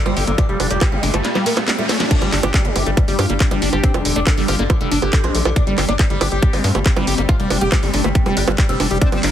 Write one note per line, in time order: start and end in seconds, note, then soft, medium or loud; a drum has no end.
0.00 2.10 G3 medium
0.00 2.13 F4 medium
0.00 riser medium
0.06 0.13 G1 medium
0.06 0.16 G3 loud
0.06 0.12 C4 medium
0.06 high bongo medium
0.17 0.24 G1 loud
0.17 0.23 D3 medium
0.17 0.24 G4 medium
0.17 open hi-hat loud
0.27 0.35 G1 medium
0.27 0.34 D3 medium
0.27 0.32 A#3 medium
0.27 closed hi-hat medium
0.38 0.45 D4 loud
0.38 kick loud
0.38 closed hi-hat medium
0.38 high bongo soft
0.49 0.56 F1 medium
0.49 0.56 G3 medium
0.49 0.59 G3 medium
0.60 0.67 F1 loud
0.60 0.66 G3 medium
0.60 0.67 D4 medium
0.60 open hi-hat loud
0.60 high bongo soft
0.71 0.78 F1 medium
0.71 0.77 D4 medium
0.71 0.94 G4 medium
0.71 closed hi-hat medium
0.81 0.88 G3 medium
0.81 kick loud
0.81 clap loud
0.81 closed hi-hat medium
0.81 high bongo medium
0.92 0.99 G1 medium
0.92 0.99 G3 medium
0.92 1.04 G3 loud
1.03 1.10 G1 loud
1.03 1.10 A3 loud
1.03 1.10 D4 loud
1.03 open hi-hat loud
1.14 1.21 G1 medium
1.14 1.20 G3 medium
1.14 1.18 A3 medium
1.14 closed hi-hat medium
1.14 high bongo soft
1.25 1.31 G3 medium
1.25 snare medium
1.25 closed hi-hat medium
1.35 1.42 G3 medium
1.35 1.46 G3 loud
1.35 snare medium
1.35 high bongo soft
1.46 1.54 A3 medium
1.46 1.53 A#3 medium
1.46 open hi-hat loud
1.57 1.64 G3 medium
1.57 1.64 A3 medium
1.57 snare medium
1.57 closed hi-hat medium
1.57 high bongo medium
1.68 1.74 G3 medium
1.68 1.72 D4 medium
1.68 snare medium
1.68 clap loud
1.68 open hi-hat medium
1.78 1.86 G3 medium
1.78 1.85 A3 medium
1.89 1.96 G3 medium
1.89 1.97 A3 medium
1.89 snare medium
1.89 open hi-hat loud
1.89 high bongo soft
2.00 2.05 F3 medium
2.00 2.07 G3 medium
2.00 snare medium
2.00 closed hi-hat medium
2.11 9.31 G3 medium
2.11 5.58 D4 medium
2.11 2.17 D4 loud
2.11 kick loud
2.11 closed hi-hat medium
2.11 crash loud
2.22 2.29 G1 medium
2.22 2.32 G3 medium
2.22 2.28 G3 medium
2.22 closed hi-hat soft
2.22 high bongo soft
2.32 2.40 G1 loud
2.32 2.39 G3 medium
2.32 2.40 D4 medium
2.32 clap medium
2.32 open hi-hat loud
2.43 2.50 G1 medium
2.43 2.50 D4 loud
2.43 2.66 G4 medium
2.43 high bongo medium
2.54 2.61 G3 medium
2.54 kick loud
2.54 clap loud
2.54 closed hi-hat medium
2.65 2.72 G1 medium
2.65 2.77 G3 loud
2.65 2.71 G3 medium
2.65 closed hi-hat soft
2.76 2.83 G1 loud
2.76 2.83 A3 loud
2.76 2.82 G4 loud
2.76 open hi-hat loud
2.76 high bongo soft
2.86 2.94 G1 medium
2.86 2.93 G3 medium
2.86 2.91 A3 medium
2.86 closed hi-hat soft
2.97 3.04 G3 medium
2.97 kick loud
2.97 closed hi-hat medium
2.97 high bongo soft
3.08 3.15 G1 medium
3.08 3.18 G3 loud
3.08 3.15 G3 medium
3.08 open hi-hat medium
3.19 3.26 G2 loud
3.19 3.25 F4 loud
3.19 3.26 G4 medium
3.19 open hi-hat loud
3.19 high bongo medium
3.30 3.37 G1 medium
3.30 3.36 G3 medium
3.30 3.34 A#3 medium
3.30 closed hi-hat soft
3.40 3.47 G3 medium
3.40 kick loud
3.40 clap loud
3.40 closed hi-hat medium
3.51 3.58 G1 medium
3.51 3.61 G3 medium
3.51 3.58 D4 loud
3.51 closed hi-hat soft
3.51 high bongo soft
3.62 3.69 G1 loud
3.62 3.69 G3 medium
3.62 3.69 D4 medium
3.62 open hi-hat loud
3.73 3.80 G1 loud
3.73 3.79 G3 medium
3.73 3.96 G4 medium
3.73 closed hi-hat soft
3.73 high bongo soft
3.84 3.90 C4 loud
3.84 kick loud
3.84 closed hi-hat medium
3.94 4.01 F1 medium
3.94 4.01 D3 medium
3.94 4.07 G3 loud
3.94 closed hi-hat soft
3.94 high bongo medium
4.05 4.12 F1 loud
4.05 4.12 D3 medium
4.05 4.13 A3 loud
4.05 open hi-hat loud
4.16 4.23 F1 medium
4.16 4.20 A3 medium
4.16 4.23 D4 medium
4.16 closed hi-hat soft
4.27 4.33 D3 medium
4.27 kick loud
4.27 clap loud
4.27 closed hi-hat medium
4.27 high bongo soft
4.37 4.45 G1 medium
4.37 4.44 D3 medium
4.37 4.48 G3 loud
4.37 open hi-hat medium
4.48 4.55 G1 loud
4.48 4.55 F4 loud
4.48 4.56 G4 medium
4.48 open hi-hat loud
4.48 high bongo soft
4.59 4.66 G1 medium
4.59 4.66 D3 medium
4.59 4.64 A#3 medium
4.59 closed hi-hat soft
4.70 4.76 D3 medium
4.70 kick loud
4.70 closed hi-hat medium
4.70 high bongo medium
4.81 4.88 F1 medium
4.81 4.87 D3 medium
4.81 4.91 G3 medium
4.81 closed hi-hat soft
4.91 4.99 G1 loud
4.91 4.99 D4 medium
4.91 4.98 D4 loud
4.91 open hi-hat loud
5.02 5.09 G1 medium
5.02 5.09 D3 medium
5.02 5.25 G4 medium
5.02 closed hi-hat soft
5.02 high bongo soft
5.13 5.20 D3 medium
5.13 kick loud
5.13 clap loud
5.13 closed hi-hat medium
5.24 5.31 A#1 medium
5.24 5.36 G3 loud
5.24 5.30 C4 loud
5.24 closed hi-hat soft
5.24 high bongo soft
5.35 5.42 A#1 loud
5.35 5.41 D3 medium
5.35 5.42 A3 loud
5.35 open hi-hat loud
5.45 5.53 A#1 loud
5.45 5.52 D3 medium
5.45 5.50 A3 medium
5.45 closed hi-hat soft
5.45 high bongo medium
5.56 9.04 C4 medium
5.56 5.63 D4 loud
5.56 kick loud
5.56 closed hi-hat medium
5.67 5.74 G1 medium
5.67 5.77 G3 loud
5.67 5.74 G3 medium
5.67 closed hi-hat soft
5.78 5.85 G1 loud
5.78 5.84 G3 medium
5.78 5.85 G4 medium
5.78 clap medium
5.78 open hi-hat loud
5.78 high bongo soft
5.89 5.96 G1 medium
5.89 5.93 A#3 medium
5.89 5.95 D4 loud
5.89 closed hi-hat soft
5.99 6.06 G3 medium
5.99 kick loud
5.99 clap loud
5.99 closed hi-hat medium
5.99 high bongo soft
6.10 6.17 G1 medium
6.10 6.17 G3 medium
6.10 6.20 G3 medium
6.10 closed hi-hat soft
6.21 6.28 G1 loud
6.21 6.28 D4 medium
6.21 6.28 G4 loud
6.21 open hi-hat loud
6.21 high bongo medium
6.32 6.39 G1 medium
6.32 6.38 G3 medium
6.32 6.55 G4 medium
6.32 closed hi-hat soft
6.42 6.49 G3 medium
6.42 kick loud
6.42 closed hi-hat medium
6.53 6.60 G1 medium
6.53 6.66 G3 loud
6.53 6.60 G3 medium
6.53 open hi-hat medium
6.53 high bongo soft
6.64 6.71 G2 loud
6.64 6.72 A3 loud
6.64 6.71 F4 loud
6.64 open hi-hat loud
6.75 6.82 G1 loud
6.75 6.82 G3 medium
6.75 6.79 A3 medium
6.75 closed hi-hat soft
6.75 high bongo soft
6.86 kick loud
6.86 clap loud
6.86 closed hi-hat medium
6.96 7.04 G1 medium
6.96 7.07 G3 loud
6.96 7.03 D4 medium
6.96 closed hi-hat soft
6.96 high bongo medium
7.07 7.14 G1 loud
7.07 7.14 G3 medium
7.07 7.15 G4 medium
7.07 open hi-hat loud
7.18 7.25 G1 loud
7.18 7.25 G3 medium
7.18 7.23 A#3 medium
7.18 closed hi-hat soft
7.29 7.35 F4 loud
7.29 kick loud
7.29 closed hi-hat medium
7.29 high bongo soft
7.40 7.47 F1 medium
7.40 7.46 G3 medium
7.40 7.50 G3 medium
7.40 closed hi-hat soft
7.50 7.58 F1 loud
7.50 7.57 G3 medium
7.50 7.58 D4 medium
7.50 open hi-hat loud
7.50 high bongo soft
7.61 7.68 F1 medium
7.61 7.84 G4 medium
7.61 7.68 G4 medium
7.61 closed hi-hat soft
7.72 7.79 G3 medium
7.72 kick loud
7.72 clap loud
7.72 closed hi-hat medium
7.72 high bongo medium
7.83 7.90 G1 medium
7.83 7.89 G3 medium
7.83 7.95 G3 loud
7.83 open hi-hat medium
7.94 8.01 G1 loud
7.94 8.01 A3 loud
7.94 8.00 D4 loud
7.94 open hi-hat loud
8.04 8.12 G1 medium
8.04 8.11 G3 medium
8.04 8.09 A3 medium
8.04 closed hi-hat soft
8.04 high bongo soft
8.15 8.22 G3 medium
8.15 kick loud
8.15 closed hi-hat medium
8.26 8.33 F1 medium
8.26 8.33 G3 medium
8.26 8.36 G3 loud
8.26 closed hi-hat soft
8.26 high bongo soft
8.37 8.44 G1 loud
8.37 8.43 D4 loud
8.37 8.44 G4 medium
8.37 open hi-hat loud
8.48 8.55 G1 medium
8.48 8.54 G3 medium
8.48 8.52 A#3 medium
8.48 closed hi-hat soft
8.48 high bongo medium
8.58 8.65 G3 medium
8.58 kick loud
8.58 clap loud
8.58 closed hi-hat medium
8.69 8.76 F1 medium
8.69 8.79 G3 medium
8.69 8.76 C4 loud
8.69 closed hi-hat soft
8.80 8.87 F1 loud
8.80 8.87 G3 medium
8.80 8.87 D4 medium
8.80 open hi-hat loud
8.80 high bongo soft
8.91 8.98 F1 loud
8.91 8.97 G3 medium
8.91 8.98 G4 medium
8.91 closed hi-hat soft
9.02 9.20 C4 medium
9.02 9.31 D4 medium
9.02 9.08 D4 loud
9.02 kick loud
9.02 closed hi-hat medium
9.12 9.19 G1 medium
9.12 9.23 G3 medium
9.12 9.19 G3 medium
9.12 closed hi-hat soft
9.12 high bongo soft
9.23 9.30 G1 loud
9.23 9.30 G3 medium
9.23 9.31 A#3 loud
9.23 9.31 D4 medium
9.23 clap medium
9.23 open hi-hat loud